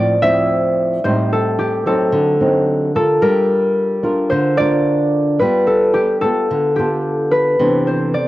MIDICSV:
0, 0, Header, 1, 3, 480
1, 0, Start_track
1, 0, Tempo, 546946
1, 904, Time_signature, 4, 2, 24, 8
1, 7266, End_track
2, 0, Start_track
2, 0, Title_t, "Harp"
2, 0, Program_c, 0, 46
2, 0, Note_on_c, 0, 70, 66
2, 0, Note_on_c, 0, 72, 86
2, 0, Note_on_c, 0, 74, 86
2, 194, Note_on_c, 0, 76, 88
2, 626, Note_off_c, 0, 70, 0
2, 742, Note_off_c, 0, 72, 0
2, 914, Note_on_c, 0, 72, 86
2, 1163, Note_on_c, 0, 69, 69
2, 1392, Note_on_c, 0, 67, 70
2, 1572, Note_off_c, 0, 74, 0
2, 1636, Note_off_c, 0, 69, 0
2, 1640, Note_on_c, 0, 69, 78
2, 1706, Note_off_c, 0, 76, 0
2, 2594, Note_off_c, 0, 69, 0
2, 2597, Note_on_c, 0, 69, 73
2, 2651, Note_off_c, 0, 72, 0
2, 2825, Note_on_c, 0, 70, 78
2, 2878, Note_off_c, 0, 69, 0
2, 3457, Note_off_c, 0, 67, 0
2, 3773, Note_on_c, 0, 72, 80
2, 4014, Note_on_c, 0, 74, 84
2, 4687, Note_off_c, 0, 70, 0
2, 4735, Note_on_c, 0, 71, 79
2, 4787, Note_off_c, 0, 72, 0
2, 4975, Note_on_c, 0, 69, 70
2, 5210, Note_on_c, 0, 67, 66
2, 5447, Note_off_c, 0, 69, 0
2, 5451, Note_on_c, 0, 69, 78
2, 5635, Note_off_c, 0, 74, 0
2, 5926, Note_off_c, 0, 67, 0
2, 5930, Note_on_c, 0, 67, 69
2, 6414, Note_off_c, 0, 71, 0
2, 6417, Note_on_c, 0, 71, 72
2, 6906, Note_on_c, 0, 72, 62
2, 6959, Note_off_c, 0, 71, 0
2, 7144, Note_on_c, 0, 74, 71
2, 7266, Note_off_c, 0, 67, 0
2, 7266, Note_off_c, 0, 69, 0
2, 7266, Note_off_c, 0, 72, 0
2, 7266, Note_off_c, 0, 74, 0
2, 7266, End_track
3, 0, Start_track
3, 0, Title_t, "Nylon-string guitar"
3, 0, Program_c, 1, 24
3, 0, Note_on_c, 1, 45, 55
3, 0, Note_on_c, 1, 53, 50
3, 0, Note_on_c, 1, 60, 50
3, 0, Note_on_c, 1, 64, 50
3, 153, Note_off_c, 1, 53, 0
3, 153, Note_off_c, 1, 60, 0
3, 154, Note_off_c, 1, 64, 0
3, 201, Note_on_c, 1, 53, 55
3, 204, Note_on_c, 1, 60, 52
3, 209, Note_on_c, 1, 64, 64
3, 874, Note_off_c, 1, 53, 0
3, 875, Note_off_c, 1, 60, 0
3, 878, Note_off_c, 1, 64, 0
3, 885, Note_off_c, 1, 45, 0
3, 920, Note_on_c, 1, 45, 58
3, 921, Note_on_c, 1, 55, 48
3, 925, Note_on_c, 1, 60, 45
3, 928, Note_on_c, 1, 63, 52
3, 1593, Note_off_c, 1, 55, 0
3, 1596, Note_off_c, 1, 60, 0
3, 1597, Note_off_c, 1, 63, 0
3, 1630, Note_on_c, 1, 54, 52
3, 1634, Note_on_c, 1, 60, 56
3, 1636, Note_on_c, 1, 63, 55
3, 1848, Note_off_c, 1, 45, 0
3, 1864, Note_on_c, 1, 50, 62
3, 2068, Note_off_c, 1, 54, 0
3, 2070, Note_off_c, 1, 63, 0
3, 2071, Note_off_c, 1, 60, 0
3, 2108, Note_on_c, 1, 54, 49
3, 2112, Note_on_c, 1, 60, 55
3, 2119, Note_on_c, 1, 63, 58
3, 2547, Note_off_c, 1, 54, 0
3, 2550, Note_off_c, 1, 60, 0
3, 2551, Note_off_c, 1, 63, 0
3, 2589, Note_on_c, 1, 62, 52
3, 2595, Note_on_c, 1, 65, 54
3, 2595, Note_on_c, 1, 70, 59
3, 2799, Note_off_c, 1, 50, 0
3, 2828, Note_on_c, 1, 55, 63
3, 3508, Note_off_c, 1, 62, 0
3, 3509, Note_off_c, 1, 65, 0
3, 3510, Note_off_c, 1, 70, 0
3, 3538, Note_on_c, 1, 62, 51
3, 3543, Note_on_c, 1, 65, 55
3, 3549, Note_on_c, 1, 70, 60
3, 3761, Note_off_c, 1, 55, 0
3, 3790, Note_on_c, 1, 50, 61
3, 3983, Note_off_c, 1, 62, 0
3, 3984, Note_off_c, 1, 65, 0
3, 3988, Note_off_c, 1, 70, 0
3, 4033, Note_on_c, 1, 62, 58
3, 4036, Note_on_c, 1, 65, 64
3, 4041, Note_on_c, 1, 70, 61
3, 4709, Note_off_c, 1, 62, 0
3, 4712, Note_off_c, 1, 65, 0
3, 4712, Note_off_c, 1, 70, 0
3, 4722, Note_off_c, 1, 50, 0
3, 4751, Note_on_c, 1, 55, 61
3, 4752, Note_on_c, 1, 59, 54
3, 4756, Note_on_c, 1, 69, 51
3, 4758, Note_on_c, 1, 65, 50
3, 5224, Note_off_c, 1, 59, 0
3, 5225, Note_off_c, 1, 65, 0
3, 5227, Note_off_c, 1, 69, 0
3, 5467, Note_on_c, 1, 59, 55
3, 5472, Note_on_c, 1, 65, 51
3, 5476, Note_on_c, 1, 69, 60
3, 5683, Note_off_c, 1, 55, 0
3, 5711, Note_on_c, 1, 50, 54
3, 5906, Note_off_c, 1, 59, 0
3, 5909, Note_off_c, 1, 65, 0
3, 5911, Note_off_c, 1, 69, 0
3, 5953, Note_on_c, 1, 59, 49
3, 5958, Note_on_c, 1, 65, 56
3, 5960, Note_on_c, 1, 69, 58
3, 6630, Note_off_c, 1, 59, 0
3, 6631, Note_off_c, 1, 65, 0
3, 6633, Note_off_c, 1, 69, 0
3, 6643, Note_off_c, 1, 50, 0
3, 6665, Note_on_c, 1, 48, 60
3, 6669, Note_on_c, 1, 52, 50
3, 6670, Note_on_c, 1, 59, 44
3, 6674, Note_on_c, 1, 62, 57
3, 7142, Note_off_c, 1, 52, 0
3, 7144, Note_off_c, 1, 59, 0
3, 7146, Note_off_c, 1, 62, 0
3, 7266, Note_off_c, 1, 48, 0
3, 7266, End_track
0, 0, End_of_file